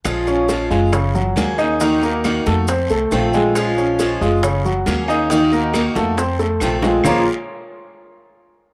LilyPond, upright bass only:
\new Staff \with { instrumentName = "Upright bass" } { \clef bass \time 4/4 \key bes \minor \tempo 4 = 137 bes,,4. ges,,4. ees,4~ | ees,4. f,4 c,8 bes,,4~ | bes,,4. ges,,4. ees,4~ | ees,4. f,4. bes,,4 |
bes,,8 r2. r8 | }